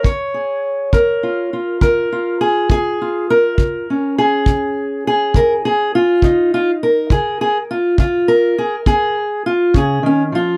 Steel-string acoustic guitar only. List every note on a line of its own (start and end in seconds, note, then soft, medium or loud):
0.03 0.57 C#3 medium
0.03 1.52 C#5 medium
0.34 0.93 G#4 soft
0.93 1.46 C#3 medium
0.93 1.80 A#4 medium
1.23 1.53 F4 soft
1.53 2.12 F4 soft
1.81 2.34 C#3 medium
1.81 2.40 A#4 loud
2.12 3.01 F4 soft
2.41 2.70 G#4 medium
2.71 3.23 C#3 medium
2.71 3.29 G#4 medium
3.02 3.90 F4 soft
3.30 4.18 A#4 medium
3.59 4.12 C#3 medium
3.90 6.23 C#4 soft
4.18 5.06 G#4 medium
4.48 5.00 C#3 medium
5.07 5.64 G#4 medium
5.35 5.88 C#3 medium
5.35 5.52 A#4 loud
5.65 5.94 G#4 medium
5.95 6.53 F4 medium
6.23 6.76 C#3 medium
6.23 7.11 D#4 medium
6.54 6.70 F4 medium
6.83 7.70 A#4 medium
7.11 7.64 C#3 medium
7.11 7.40 G#4 medium
7.41 7.57 G#4 medium
7.71 7.98 F4 medium
7.99 8.51 C#3 medium
7.99 8.58 F4 medium
8.28 9.16 A#4 loud
8.58 8.74 G#4 medium
8.87 9.39 C#3 medium
8.87 9.45 G#4 loud
9.46 9.75 F4 medium
9.74 10.03 C#3 medium
9.74 10.05 G#4 medium
10.03 10.32 D#3 medium
10.03 10.22 C#4 medium
10.32 10.57 F3 medium
10.32 10.57 F4 medium